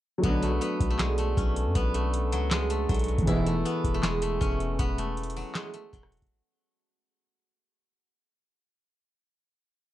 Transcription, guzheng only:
0.24 B3
0.42 A3
0.61 B3
0.90 A3
0.99 G#3
1.19 A3
1.37 C#4
1.75 B3
1.94 A3
2.32 F#3
2.51 G#3
2.70 A3
2.89 F#3
3.27 E4
3.46 A3
3.65 B3
3.94 A3
4.03 G#3
4.22 A3
4.41 C#4
4.79 B3
4.98 A3
5.37 F#3
5.55 G#3
5.74 A3
5.93 F#3

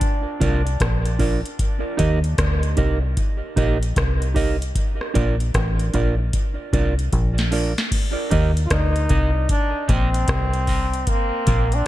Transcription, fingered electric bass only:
0.41 C2
0.81 A#1
2.00 D#2
2.39 D2
2.78 C2
3.57 A#1
3.97 C2
5.16 A#1
5.55 A1
5.94 A#1
6.74 C2
7.13 A#1
8.32 D#2
8.71 D2
9.11 C2
9.89 A#1
10.29 C2
11.47 A#1

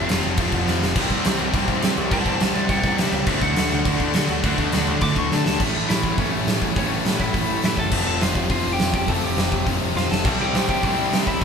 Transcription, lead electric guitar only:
Already playing: F5
2.12 C5 A5
2.27 C5 A5
2.41 C5 A5
2.55 D5 F#5
2.70 D5 F#5
2.83 D5 F#5
2.97 C5 E5
3.12 C5 E5
3.26 C5 E5
3.42 F#5
5.03 D6
5.19 C#6
5.32 A5
5.47 A5
5.89 E4 E5
6.19 C#4 C#5
6.77 C#4 C#5
7.21 E4 E5
7.65 E4 E5
7.79 A4 A5
8.06 A4 A5
8.22 F4 F5
8.51 F4 F5
8.73 G4 G5
8.95 G4 G5
9.09 A4 A5
9.24 G4 G5
9.97 F4 F5
10.11 A4 A5
10.41 G4 G5
10.69 G4 G5
11.28 E4 E5

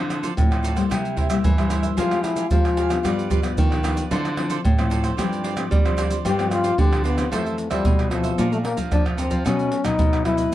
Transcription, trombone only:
1.98 F4
2.24 E4
2.51 F4
6.26 G4
6.52 F4
6.80 G4
7.06 B3
7.32 A3
7.71 G3
8.12 F3
8.53 A3
8.65 A#3
8.92 D4
9.18 C4
9.46 C#4
9.85 D#4
10.26 E4

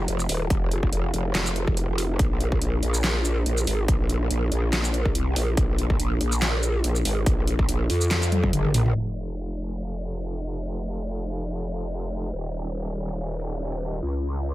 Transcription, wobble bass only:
0.08 F1
0.29 D#1
0.50 F1
0.93 F1
1.14 F1
1.35 F1
1.67 F1
1.89 F1
2.19 A#1
2.62 A#1
2.83 A#1
3.46 A#1
3.67 G#1
3.88 A#1
4.31 A#1
4.52 A#1
5.15 C2
5.36 A#1
5.57 A#1
6.00 A#1
6.21 A#1
6.84 A#1
7.05 G#1
7.26 A#1
7.69 A#1
7.90 F2
8.53 G#1
8.74 A#1
8.95 F1
12.33 D#1
14.02 C#2

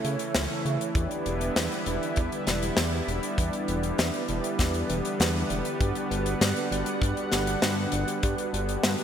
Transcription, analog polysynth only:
Already playing: C#3 C#4 E4 A4 C#5 E5
0.50 C#3 C#4 E4 A4 C#5 E5
0.96 E3 D4 E4 G4 B4 D5
1.86 E3 D4 E4 G4 B4 D5
3.38 E3 D4 E4 G4 B4 D5
4.29 E3 D4 E4 G4 B4 D5
5.81 G3 D4 F#4 G4 B4 D5
6.71 G3 D4 F#4 G4 B4 D5
8.23 G3 D4 F#4 G4 B4 D5

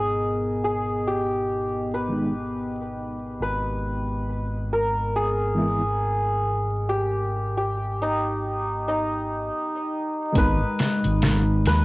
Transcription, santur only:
Already playing: G#4 A#4
0.64 G#4
1.07 G4
1.94 B4
3.42 B4
4.73 A#4
5.16 G#4
6.89 G4
7.57 G4
8.02 D#4
8.88 D#4
10.38 B4
11.67 B4

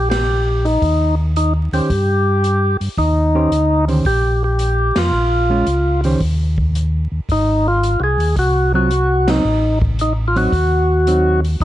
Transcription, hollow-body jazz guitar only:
1.73 D#3 C#4 G4 C5
3.35 D#3 C#4 G4 C5
3.88 D#3 C#4 G4 C5
5.50 G#3 C#4 F4
6.04 D#3 C#4 G4 C5
8.74 F#3 C4 F4
9.27 F#3 C4 D#4
10.35 F#3 C4 D#4
11.07 F#3 C4 D#4

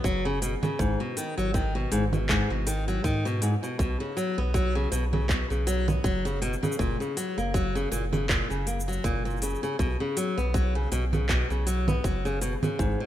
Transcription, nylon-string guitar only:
0.04 F#3
0.25 C#3
0.42 B2
0.63 C#3
0.79 G#2
1.00 B2
1.17 D#3
1.38 F#3
1.54 D#3
1.75 B2
1.92 G#2
2.13 B2
2.29 G#2
2.50 B2
2.67 D#3
2.88 F#3
3.04 D#3
3.25 B2
3.42 G#2
3.63 B2
3.79 B2
4.00 C#3
4.17 F#3
4.38 B3
4.54 F#3
4.75 C#3
4.92 B2
5.13 C#3
5.29 B2
5.50 C#3
5.67 F#3
5.88 B3
6.04 F#3
6.25 C#3
6.42 B2
6.63 C#3
6.79 A#2
7.00 C#3
7.17 F#3
7.38 A#3
7.54 F#3
7.75 C#3
7.92 A#2
8.12 C#3
8.29 A#2
8.50 C#3
8.67 A#3
8.88 F#3
9.04 A#2
9.25 A#2
9.42 C#3
9.63 C#3
9.79 B2
10.00 C#3
10.17 F#3
10.38 B3
10.54 F#3
10.75 C#3
10.92 B2
11.13 C#3
11.29 B2
11.50 C#3
11.67 F#3
11.88 B3
12.04 F#3
12.25 C#3
12.42 B2
12.63 C#3
12.79 G#2
13.00 B2

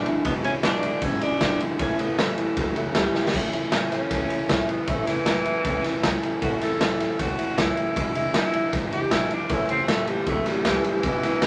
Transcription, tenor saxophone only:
0.25 B3
0.44 C#4
0.64 D4
1.03 E4
1.23 D4
1.81 C#4
2.01 B3
2.20 A3
3.91 C#4
4.69 B3
4.87 A3
5.06 E3
6.43 F#4
6.62 A4
7.19 F#4
7.58 E4
8.15 E4
8.35 E4
8.93 G4
9.13 E4
9.33 D4
9.51 E4
9.70 C4
9.90 A3
10.08 G3
10.28 A3
10.47 G3
10.67 E3
10.86 E3

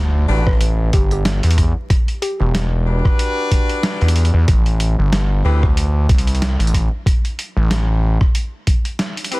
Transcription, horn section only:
0.29 D4 F#4 G4 B4
2.86 D4 F#4 G4 B4
5.45 C4 E4 G4 B4
9.32 C4 E4 G4 B4

